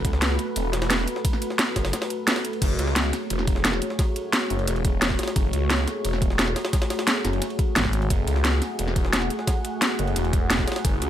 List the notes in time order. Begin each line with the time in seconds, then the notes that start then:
Already playing: A3 F#4 A4 B4
0.05 C#2, kick, closed hi-hat, ride
0.13 snare
0.22 snare, closed hi-hat, ride
0.39 closed hi-hat, ride
0.56 E1, closed hi-hat, ride
0.73 snare, closed hi-hat, ride
0.82 snare, ride
0.90 snare, closed hi-hat, ride
0.99 ride
1.08 closed hi-hat, ride
1.16 snare
1.25 kick, closed hi-hat, ride
1.33 snare
1.42 closed hi-hat, ride
1.50 snare
1.59 snare, closed hi-hat, ride
1.76 F#1, kick, snare, closed hi-hat, ride
1.85 snare, ride
1.93 snare, closed hi-hat, ride
2.02 snare, ride
2.10 closed hi-hat, ride
2.27 snare, closed hi-hat, ride
2.32 snare, ride
2.36 snare, ride
2.45 closed hi-hat, ride
2.53 ride
2.62 F#1 A3 F#4 G#4 C#5, kick, closed hi-hat, crash, ride
2.79 C#2, closed hi-hat, ride
2.87 snare
2.96 snare, closed hi-hat, ride
3.13 snare, closed hi-hat, ride
3.30 E1, closed hi-hat, ride
3.39 snare
3.47 kick, closed hi-hat, ride
3.56 snare
3.65 snare, closed hi-hat, ride
3.73 snare, ride
3.82 closed hi-hat, ride
3.90 snare
3.99 kick, snare, closed hi-hat, ride
4.16 closed hi-hat, ride
4.33 snare, closed hi-hat, ride
4.50 F#1, closed hi-hat, ride
4.59 ride
4.67 E1, snare, closed hi-hat, ride
4.76 ride
4.85 kick, closed hi-hat, ride
5.02 snare, closed hi-hat, ride
5.10 kick, snare
5.19 snare, closed hi-hat, ride
5.23 snare, ride
5.28 snare, ride
5.36 F#1, kick, closed hi-hat, ride
5.53 C#2, closed hi-hat, ride
5.70 snare, closed hi-hat, ride
5.88 snare, closed hi-hat, ride
6.05 E1, closed hi-hat, ride
6.13 snare
6.22 kick, closed hi-hat, ride
6.30 snare
6.39 snare, closed hi-hat, ride
6.48 snare, ride
6.56 snare, closed hi-hat, ride
6.65 snare, ride
6.73 kick, snare, closed hi-hat, ride
6.82 snare, ride
6.90 snare, closed hi-hat, ride
6.99 snare, ride
7.07 snare, closed hi-hat, ride
7.25 F#1, snare, closed hi-hat, ride
7.33 ride
7.42 snare, closed hi-hat, ride
7.50 ride
7.59 kick, closed hi-hat, ride
7.76 G#1, snare, closed hi-hat, ride
7.85 kick, snare
7.93 closed hi-hat, ride
8.02 ride
8.10 F#1 F#5, kick, closed hi-hat, ride
8.27 C#2, closed hi-hat, ride
8.36 snare
8.45 snare, closed hi-hat, ride
8.62 snare, closed hi-hat, ride
8.79 E1, closed hi-hat, ride
8.87 snare
8.96 kick, closed hi-hat, ride
9.05 snare
9.13 snare, closed hi-hat, ride
9.22 snare, ride
9.30 closed hi-hat, ride
9.39 snare
9.47 kick, snare, closed hi-hat, ride
9.65 closed hi-hat, ride
9.82 snare, closed hi-hat, ride
9.99 F#1, closed hi-hat, ride
10.07 ride
10.16 E1, snare, closed hi-hat, ride
10.25 ride
10.33 kick, closed hi-hat, ride
10.50 snare, closed hi-hat, ride
10.59 kick, snare
10.68 snare, closed hi-hat, ride
10.72 snare, ride
10.76 snare, ride
10.85 F#1, kick, closed hi-hat, ride
11.02 C#2, closed hi-hat, ride